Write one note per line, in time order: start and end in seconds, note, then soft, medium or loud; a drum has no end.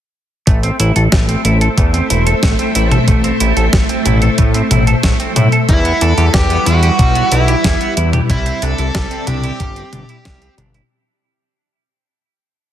0.47 0.71 A1 loud
0.47 5.65 A3 medium
0.47 0.59 A3 medium
0.47 5.65 A4 medium
0.47 5.65 C5 medium
0.47 5.65 E5 medium
0.47 kick loud
0.47 closed hi-hat medium
0.63 0.75 C4 medium
0.63 closed hi-hat soft
0.80 0.92 A1 loud
0.80 0.92 E4 medium
0.80 closed hi-hat loud
0.96 1.08 A1 medium
0.96 1.03 A4 medium
0.96 closed hi-hat soft
1.12 1.36 A1 medium
1.12 1.24 A3 medium
1.12 kick loud
1.12 snare loud
1.12 closed hi-hat medium
1.29 1.40 C4 loud
1.29 closed hi-hat soft
1.45 1.69 A1 medium
1.45 1.57 E4 medium
1.45 closed hi-hat medium
1.61 1.68 A4 medium
1.61 closed hi-hat soft
1.78 2.01 E2 loud
1.78 1.89 A3 medium
1.78 kick loud
1.78 closed hi-hat medium
1.94 2.06 C4 loud
1.94 closed hi-hat soft
2.10 2.34 E1 medium
2.10 2.22 E4 medium
2.10 closed hi-hat loud
2.27 2.34 A4 medium
2.27 closed hi-hat soft
2.43 2.55 A1 loud
2.43 2.55 A3 medium
2.43 kick loud
2.43 snare loud
2.43 closed hi-hat medium
2.59 2.71 C4 loud
2.59 closed hi-hat soft
2.75 2.99 A1 medium
2.75 2.87 E4 medium
2.75 closed hi-hat loud
2.91 2.99 A4 medium
2.91 closed hi-hat soft
2.91 mid tom medium
3.08 3.32 A1 medium
3.08 3.20 A3 medium
3.08 kick loud
3.08 closed hi-hat medium
3.24 3.36 C4 loud
3.24 closed hi-hat soft
3.40 3.52 A1 medium
3.40 3.52 E4 medium
3.40 closed hi-hat loud
3.57 3.69 A1 medium
3.57 3.64 A4 medium
3.57 closed hi-hat soft
3.73 3.85 A1 loud
3.73 3.85 A3 medium
3.73 kick loud
3.73 snare loud
3.73 closed hi-hat medium
3.89 4.01 C4 medium
3.89 closed hi-hat soft
4.06 4.30 A1 loud
4.06 4.18 E4 medium
4.06 closed hi-hat medium
4.06 mid tom medium
4.22 4.29 A4 medium
4.22 closed hi-hat soft
4.38 4.62 A2 medium
4.38 4.50 A3 medium
4.38 kick loud
4.38 closed hi-hat medium
4.54 4.66 C4 loud
4.54 closed hi-hat soft
4.71 4.95 A1 medium
4.71 4.83 E4 medium
4.71 closed hi-hat medium
4.71 mid tom medium
4.87 4.94 A4 medium
4.87 closed hi-hat soft
5.03 5.15 A1 loud
5.03 5.16 A3 medium
5.03 kick loud
5.03 snare loud
5.03 closed hi-hat medium
5.20 5.32 C4 loud
5.20 closed hi-hat soft
5.36 5.48 A2 loud
5.36 5.48 E4 medium
5.36 closed hi-hat loud
5.36 mid tom medium
5.52 5.60 A4 medium
5.52 closed hi-hat soft
5.69 5.92 E2 loud
5.69 5.81 G3 medium
5.69 10.87 G3 medium
5.69 8.27 E4 medium
5.69 6.03 E4 medium
5.69 8.27 B4 medium
5.69 kick loud
5.69 closed hi-hat medium
5.85 5.97 B3 loud
5.85 closed hi-hat soft
6.01 6.13 E2 loud
6.01 6.13 E4 medium
6.01 6.34 A4 loud
6.01 closed hi-hat medium
6.18 6.30 E2 medium
6.18 6.25 G4 medium
6.18 closed hi-hat soft
6.34 6.58 E2 medium
6.34 6.46 G3 medium
6.34 6.67 G4 loud
6.34 kick loud
6.34 snare loud
6.34 closed hi-hat medium
6.50 6.62 B3 loud
6.50 closed hi-hat soft
6.66 6.90 E2 medium
6.66 6.79 E4 medium
6.66 7.34 F#4 loud
6.66 closed hi-hat medium
6.83 6.90 G4 medium
6.83 closed hi-hat soft
6.99 7.23 B1 loud
6.99 7.11 G3 medium
6.99 kick loud
6.99 closed hi-hat medium
7.15 7.27 B3 loud
7.15 closed hi-hat soft
7.32 7.56 B1 medium
7.32 7.44 E4 medium
7.32 7.93 E4 medium
7.32 closed hi-hat loud
7.48 7.55 G4 medium
7.48 closed hi-hat soft
7.64 7.76 E2 loud
7.64 7.76 G3 medium
7.64 kick loud
7.64 snare loud
7.64 closed hi-hat medium
7.81 7.93 B3 loud
7.81 closed hi-hat soft
7.97 8.21 E2 medium
7.97 8.09 E4 medium
7.97 closed hi-hat loud
8.13 8.20 G4 medium
8.13 closed hi-hat soft
8.13 mid tom loud
8.29 8.53 C2 medium
8.29 8.41 G3 medium
8.29 10.88 C4 medium
8.29 8.64 E4 loud
8.29 10.88 D5 medium
8.29 10.88 E5 medium
8.29 kick loud
8.29 closed hi-hat medium
8.46 8.58 C4 loud
8.46 closed hi-hat soft
8.62 8.74 C2 medium
8.62 8.74 D4 medium
8.62 9.27 A4 loud
8.62 closed hi-hat medium
8.78 8.91 C2 medium
8.78 8.86 E4 medium
8.78 closed hi-hat soft
8.95 9.07 C2 loud
8.95 9.07 G3 medium
8.95 kick loud
8.95 snare loud
8.95 closed hi-hat medium
9.11 9.23 C4 loud
9.11 closed hi-hat soft
9.27 9.51 C2 loud
9.27 9.39 D4 medium
9.27 10.54 G4 medium
9.27 closed hi-hat medium
9.27 mid tom medium
9.44 9.51 E4 medium
9.44 closed hi-hat soft
9.60 9.84 G1 medium
9.60 9.72 G3 medium
9.60 kick loud
9.60 closed hi-hat medium
9.76 9.88 C4 loud
9.76 closed hi-hat soft
9.93 10.05 G1 medium
9.93 10.05 D4 medium
9.93 closed hi-hat medium
9.93 mid tom medium
10.09 10.16 E4 medium
10.09 closed hi-hat soft
10.25 10.49 C2 loud
10.25 10.37 G3 medium
10.25 kick loud
10.25 snare loud
10.25 closed hi-hat medium
10.42 10.54 C4 loud
10.42 closed hi-hat soft
10.58 10.82 G1 loud
10.58 10.70 D4 medium
10.58 closed hi-hat medium
10.58 mid tom loud
10.74 10.82 E4 medium
10.74 closed hi-hat soft